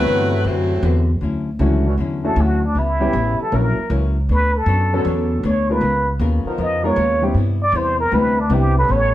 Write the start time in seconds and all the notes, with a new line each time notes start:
Already playing: C3 E3 F#3 A3 B3 C4 E4 F#4 B4
0.06 G2 D3 C4 F#4 B4
0.44 F#2 A2 C3 D3 E3 F#3 A3 C4 F#4 B4
0.83 E2 D3 C4 F#4 B4
1.21 D2 D3 F#3 C#4 E4
1.59 C#2 D3 E3 F#3 A3 C#4 D4 E4 F#4
1.85 E3 C#4 D4 F#4
1.97 E2 D3 F#3 C#4 E4
2.24 E3 A3 C#4 D4 F#4 A4
2.36 D2 D3 F#3 C#4 E4
2.41 F#4
2.65 D4
2.75 C#2 C#3 G3 B3 E4
3.00 E3 G3 B3 C#4 E4 G4
3.13 A1 C#3 G3 B3 E4
3.39 A4, muted upright bass stroke
3.51 A#1 E3 F#3 A#3 C#4 E4 F#4 A#4
3.55 A#4
3.78 muted upright bass stroke
3.90 C#2 E3 F#3 A#3 C#4 E4 A#4
4.29 D2 B3 D4 A4 B4 C#5
4.57 A4
4.66 F#2 B3 D4 A4 C#5
4.92 D3 F#3 B3 C#4 D4 A4
5.05 E2 B3 D4 A4 C#5
5.43 D2 B3 D4 A4 C#5
5.48 C#5
5.70 G#3 B3 D#4 F4 A#4 B4
5.81 C#2 C#3 B3 F4 A#4
6.19 D#2 C#3 B3 F4 A#4
6.45 F3 B3 D#4 A#4, muted upright bass stroke
6.58 F2 C#3 B3 F4 A#4
6.62 D#5
6.83 G#3 B3 D#4 F4 A#4 C#5
6.96 D#2 C#3 B3 F4 A#4
7.22 G3 C4 D4 E4 G4
7.34 G2 C3 G3 B3 E4
7.62 D5
7.72 E2 C3 G3 B3 E4
7.76 C5
8.00 A#4
8.11 D2 C3 G3 B3 C4 D4 E4 B4
8.39 D4
8.50 C2 C3 G3 B3 C4 D4 E4 B4
8.54 G4
8.76 G3 B3 C#4 A4 B4
8.88 A1 A2 G3 B3 C#4
8.92 C#5